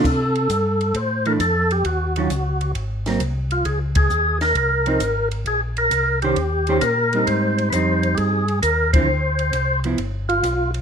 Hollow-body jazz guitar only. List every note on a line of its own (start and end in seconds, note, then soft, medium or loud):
1.26 1.39 E3 medium
1.26 1.39 A3 medium
1.26 1.39 D4 medium
2.17 2.29 D#3 medium
2.17 2.30 F#3 medium
2.17 2.30 C#4 medium
2.17 2.30 F4 medium
3.07 3.19 F#3 medium
3.07 3.20 A#3 medium
3.07 3.20 C4 medium
4.87 4.99 F3 medium
4.87 5.00 C4 medium
4.87 5.00 D#4 medium
6.24 6.36 D#3 medium
6.24 6.36 C#4 medium
6.24 6.36 G4 medium
6.24 6.36 C5 medium
6.69 6.81 D#3 medium
6.69 6.81 C#4 medium
6.69 6.81 G4 medium
6.69 6.81 C5 medium
7.14 7.70 G3 soft
7.14 7.70 C4 soft
7.14 7.71 D#4 medium
7.74 8.43 G3 soft
7.74 8.43 C4 soft
7.74 8.43 D#4 medium
8.95 9.07 D3 medium
8.95 9.07 F3 medium
8.95 9.07 C4 medium
8.95 9.08 E4 medium
9.85 9.97 F3 medium
9.85 9.98 B3 medium
9.85 9.98 E4 medium